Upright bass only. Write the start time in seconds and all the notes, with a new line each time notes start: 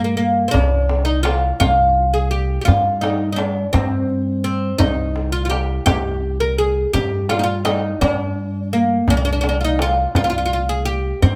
Already playing: G2
0.55 C2
1.61 C2
2.69 G2
3.75 G2
4.82 C2
5.88 C2
6.95 G2
8.02 G2
9.08 C2
10.15 C2
11.23 G2